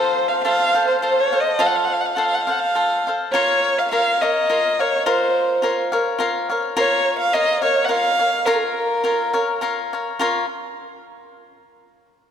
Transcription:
Already playing: cavaquinho F4 A4 C5 F5, violin C5
0.28 violin F5
0.44 cavaquinho F4 A4 C5 F5, violin F5
0.74 cavaquinho A4 C5 F5
0.88 violin C5
1.01 cavaquinho F4 A4 C5 F5, violin C5
1.20 violin C#5
1.32 cavaquinho A4 C5 F5
1.40 violin D#5
1.59 cavaquinho F4 A4 C5 F5, violin F5
1.66 violin F#5
1.76 violin F5
1.84 violin F#5
1.93 violin F5
2.00 violin F#5
2.06 violin F5
2.14 cavaquinho F4 A4, violin F#5
2.18 cavaquinho C5 F5
2.24 violin F5
2.35 violin F#5
2.41 violin F5
2.47 cavaquinho A4 C5 F5, violin F#5
2.59 violin F5
2.75 cavaquinho F4 A4 C5 F5
3.07 cavaquinho A4 C5 F5
3.32 cavaquinho F4 A#4 C#5 F5, violin C#5
3.78 violin F5
3.91 cavaquinho F4 A#4 C#5 F5, violin F5
4.21 cavaquinho A#4 C#5 F5, violin D#5
4.49 cavaquinho F4 A#4 C#5 F5
4.79 cavaquinho A#4 C#5 F5, violin C#5
5.06 cavaquinho F4 A#4 F5, violin C5
5.62 cavaquinho F4 A#4 C#5 F5
5.92 cavaquinho A#4 C#5 F5
6.18 cavaquinho F4 A#4 C#5 F5
6.50 cavaquinho A#4 C#5 F5
6.77 cavaquinho F4 A#4 C#5 F5, violin C#5
7.19 violin F5
7.33 cavaquinho F4 A#4 C#5 F5, violin D#5
7.62 cavaquinho A#4 C#5 F5, violin C#5
7.85 cavaquinho F4, violin F#5
7.89 cavaquinho A#4 C#5 F5, violin F5
8.19 cavaquinho A#4 C#5 F5
8.46 cavaquinho F4 A#4 C#5 F5, violin A#4
8.54 violin A4
8.62 violin A#4
9.04 cavaquinho F4 A#4 C#5 F5
9.33 cavaquinho A#4 C#5 F5
9.61 cavaquinho F4 A#4 C#5 F5
9.93 cavaquinho A#4 C#5 F5
10.19 cavaquinho F4 A#4 C#5 F5

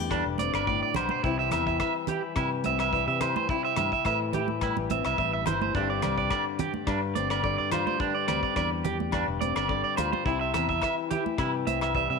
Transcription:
Already playing: fingered electric bass E2, nylon-string guitar G2 D3 G3 C4
0.00 nylon-string guitar G4
0.11 nylon-string guitar G2, clean electric guitar D4, kick, cross-stick, low agogo
0.26 fingered electric bass E1
0.38 nylon-string guitar C4, clean electric guitar D5, closed hi-hat, high conga
0.54 fingered electric bass G1, clean electric guitar D5, cross-stick, low agogo
0.67 nylon-string guitar A2, clean electric guitar D5, kick
0.83 clean electric guitar D5
0.94 fingered electric bass B1, nylon-string guitar B2, clean electric guitar C5, closed hi-hat, low conga, low agogo
1.09 clean electric guitar C5, high conga
1.23 fingered electric bass C2, nylon-string guitar C3 E3 G3 C4 E4, clean electric guitar E4, kick
1.39 clean electric guitar E5
1.51 fingered electric bass E2, nylon-string guitar C4, clean electric guitar E5, cross-stick, closed hi-hat, low conga, low agogo
1.67 clean electric guitar E5, kick
1.80 nylon-string guitar E3, clean electric guitar E5, kick, cross-stick, low agogo
2.07 nylon-string guitar E4, clean electric guitar G4, closed hi-hat, low conga
2.36 nylon-string guitar G2, fingered electric bass C3, clean electric guitar E4, kick, cross-stick, low agogo
2.64 fingered electric bass C2, nylon-string guitar C4, clean electric guitar E5, closed hi-hat, high conga
2.79 clean electric guitar E5, cross-stick, low agogo
2.92 nylon-string guitar E3 G3, clean electric guitar E5, kick
3.07 fingered electric bass C3, clean electric guitar E5
3.21 nylon-string guitar E4, clean electric guitar C5, cross-stick, closed hi-hat, low conga, low agogo
3.36 clean electric guitar C5, high conga
3.49 nylon-string guitar C3 E4, clean electric guitar E4, kick
3.65 clean electric guitar E5
3.76 fingered electric bass G2, nylon-string guitar C4, clean electric guitar E5, cross-stick, closed hi-hat, high conga, low conga, low agogo
3.92 clean electric guitar E5, kick
4.05 fingered electric bass A2, nylon-string guitar E3, clean electric guitar E5, kick, cross-stick, low agogo
4.33 nylon-string guitar E4, clean electric guitar G4, closed hi-hat, low conga
4.48 high conga
4.61 nylon-string guitar G2, clean electric guitar E4, kick, cross-stick, low agogo
4.77 fingered electric bass A1, high conga
4.90 nylon-string guitar C4, clean electric guitar E5, closed hi-hat, high conga, low conga
5.05 fingered electric bass C2, clean electric guitar E5, cross-stick, low agogo
5.18 fingered electric bass A1, nylon-string guitar E3 G3, clean electric guitar E5, kick
5.33 clean electric guitar E5
5.46 fingered electric bass G1, nylon-string guitar E4, clean electric guitar C5, closed hi-hat, low conga, low agogo
5.61 clean electric guitar C5, high conga
5.75 fingered electric bass G1, nylon-string guitar G2 D3 G3 C4 G4, clean electric guitar D4, kick
5.90 clean electric guitar D5
6.02 fingered electric bass C2, nylon-string guitar C4, clean electric guitar D5, cross-stick, closed hi-hat, low conga, low agogo
6.18 clean electric guitar D5, kick
6.30 nylon-string guitar D3, clean electric guitar D5, kick, cross-stick, low agogo
6.59 clean electric guitar G4, closed hi-hat, low conga
6.74 high conga
6.87 nylon-string guitar G2, fingered electric bass G2, clean electric guitar D4, kick, cross-stick, low agogo
7.15 fingered electric bass G1, nylon-string guitar C4, clean electric guitar D5, closed hi-hat, high conga
7.30 clean electric guitar D5, cross-stick, low agogo
7.43 nylon-string guitar D3 G3, clean electric guitar D5, kick
7.58 fingered electric bass G2, clean electric guitar D5
7.72 nylon-string guitar F4, clean electric guitar C5, cross-stick, closed hi-hat, low conga, low agogo
7.87 clean electric guitar C5, high conga
7.99 nylon-string guitar G2 G4, clean electric guitar D4, kick
8.14 clean electric guitar D5
8.28 fingered electric bass D2, nylon-string guitar C4, clean electric guitar D5, cross-stick, closed hi-hat, low conga, low agogo
8.43 clean electric guitar D5, kick
8.56 fingered electric bass E2, nylon-string guitar D3, clean electric guitar D5, kick, cross-stick, low agogo
8.85 clean electric guitar G4, nylon-string guitar G4, closed hi-hat, low conga
9.00 high conga
9.12 nylon-string guitar G2, clean electric guitar D4, kick, cross-stick, low agogo
9.28 fingered electric bass E1
9.41 nylon-string guitar C4, clean electric guitar D5, closed hi-hat, high conga
9.56 fingered electric bass G1, clean electric guitar D5, cross-stick, low agogo
9.69 nylon-string guitar D3 G3, clean electric guitar D5, kick
9.84 clean electric guitar D5
9.97 fingered electric bass D2, nylon-string guitar F4, clean electric guitar C5, closed hi-hat, low conga, low agogo
10.13 clean electric guitar C5, high conga
10.26 fingered electric bass C2, nylon-string guitar C3 E4, clean electric guitar E4, kick
10.41 clean electric guitar E5
10.54 fingered electric bass E2, nylon-string guitar C4, clean electric guitar E5, cross-stick, closed hi-hat, low conga, low agogo
10.69 clean electric guitar E5, kick
10.81 nylon-string guitar E3, clean electric guitar E5, kick, cross-stick, low agogo
11.11 nylon-string guitar E4, clean electric guitar G4, closed hi-hat, low conga
11.26 high conga
11.38 nylon-string guitar G2, fingered electric bass C3, clean electric guitar E4, kick, cross-stick, low agogo
11.67 fingered electric bass C2, nylon-string guitar C4, clean electric guitar E5, closed hi-hat, high conga
11.81 clean electric guitar E5, cross-stick, low agogo
11.95 nylon-string guitar E3 G3, clean electric guitar E5, kick
12.10 fingered electric bass C3, clean electric guitar E5

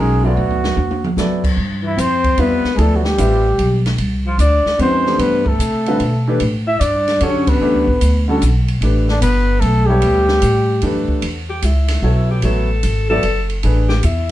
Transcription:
Already playing: upright bass B1, grand piano D#3 G#3 C#4 F#4 A#4
0.00 trumpet G#4
0.24 grand piano F#3 B3 E4 A4 D5, trumpet F#4
0.36 upright bass D2, floor tom
0.50 floor tom
0.64 snare
0.77 upright bass E2, high tom
0.91 high tom
1.04 mid tom
1.17 upright bass F#2, grand piano F#3 B3 E4 A4 D5, snare, hi-hat pedal
1.44 kick, crash
1.57 upright bass G2
1.83 alto saxophone E3, trumpet E4
1.97 upright bass F2, alto saxophone C4, trumpet C5, hi-hat pedal, ride
2.24 kick, ride
2.37 upright bass E2, grand piano G3 C4 F4 B4 E5, alto saxophone B3, trumpet B4, ride
2.64 muted upright bass stroke, snare
2.75 upright bass D2, grand piano F3, alto saxophone G#3, trumpet G#4 A4, ride
2.79 alto saxophone A3, grand piano B3 E4 A4 D5
2.95 alto saxophone F#3, trumpet F#4
3.04 alto saxophone G3, trumpet G4, snare
3.18 upright bass A1, grand piano G3 C4 F4 B4 E5, hi-hat pedal, ride
3.58 upright bass B1, ride
3.86 snare, ride
3.98 upright bass C2, ride
4.26 alto saxophone F3, trumpet F4
4.38 upright bass D2, alto saxophone D4, trumpet D5, hi-hat pedal, ride
4.65 muted upright bass stroke, snare
4.79 upright bass F2, grand piano D#3 G#3 C#4 F#4 B4, alto saxophone C4, trumpet C5, ride
5.06 grand piano E3 A3 D4 G4 C5, snare
5.18 upright bass G2, alto saxophone B3, trumpet B4, ride
5.46 alto saxophone A3, trumpet A4, kick
5.59 upright bass C3, hi-hat pedal, ride
5.86 grand piano D3 G3 C4 F4 B4, ride
6.00 upright bass B2, ride
6.27 grand piano E3 A3 D4 G4 B4
6.40 upright bass A2, ride
6.67 alto saxophone E4, trumpet E5
6.80 upright bass G2, alto saxophone D4, trumpet D5, hi-hat pedal, ride
7.08 snare, ride
7.20 upright bass F#2, grand piano D3 C#4 F#4 G4 A4, alto saxophone C#4, trumpet C#5, ride
7.47 alto saxophone B3, trumpet B4, kick, ride
7.61 upright bass E2, grand piano E3 A3 D4 G4 B4
7.74 upright bass D2
7.87 upright bass A1, kick
8.01 upright bass D2, hi-hat pedal, ride
8.28 grand piano D3 G3 C#4 F#4 A4
8.41 upright bass B1, hi-hat pedal, ride
8.68 ride
8.81 upright bass A1, grand piano E3 A3 D4 G4 B4, ride
9.08 alto saxophone D3, trumpet D4, snare
9.21 upright bass G1, alto saxophone B3, trumpet B4, hi-hat pedal, ride
9.60 upright bass B1, alto saxophone A3, trumpet A4, ride
9.86 alto saxophone G3, grand piano G3 B3 E4 A4 C#5, trumpet G4
10.02 upright bass D2, ride
10.28 snare
10.42 upright bass A2, hi-hat pedal, ride
10.82 upright bass F#2, grand piano E3 A3 D4 G4 B4, ride
11.08 muted upright bass stroke, kick
11.22 upright bass E2, ride
11.50 alto saxophone G4
11.62 upright bass C#2, alto saxophone E4, hi-hat pedal, ride
11.88 snare, ride
12.02 upright bass B1, grand piano F#3 B3 E4 A4 C#5
12.31 alto saxophone G4
12.42 upright bass A1, grand piano F#3 B3 E4 A4 C#5, alto saxophone A4, ride
12.83 upright bass G#1, hi-hat pedal, ride
13.10 grand piano F#3 B3 E4 A4 D5, alto saxophone A4
13.23 upright bass F#1, ride
13.50 ride
13.63 upright bass A1, grand piano E3 A3 D4 G#4 B4, ride
13.89 alto saxophone G4, snare
14.03 upright bass E2, alto saxophone E4, hi-hat pedal, ride

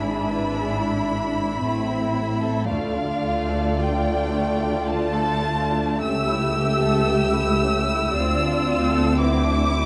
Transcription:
Already playing: double bass section G#1, cello section G#2, viola section D4 E4, violin section E5 B5
0.01 violin section G#4
0.29 violin section B4
0.57 violin section G#4
0.83 violin section E4
1.10 violin section D4
1.36 violin section E4
1.63 double bass section A1, cello section A2, violin section A3, viola section C4 E4
1.90 violin section C4
2.16 violin section E4
2.43 violin section A4
2.69 double bass section D2, cello section D2, viola section A3 F4, violin section A3 D5 F5
2.96 violin section D4
3.23 violin section F4
3.52 violin section A4
3.79 violin section F4 G5
4.08 violin section D4
4.35 violin section A3
4.61 violin section D4
4.87 violin section F4 A5
5.15 violin section A4
5.44 violin section F4
5.73 violin section D4
6.01 double bass section C#2, cello section C#2, violin section C#4 E5 E6, viola section G4
6.29 violin section E4
6.57 violin section G4
6.83 violin section A4
7.11 violin section G4
7.36 violin section E4
7.63 violin section C#4
7.90 violin section E4
8.15 cello section D2, double bass section D2, viola section C4 F4, violin section C4 D5
8.42 violin section D4
8.68 violin section F4
8.94 violin section A4
9.19 violin section B3 E5 D6, viola section E4
9.46 violin section D4
9.71 violin section E4

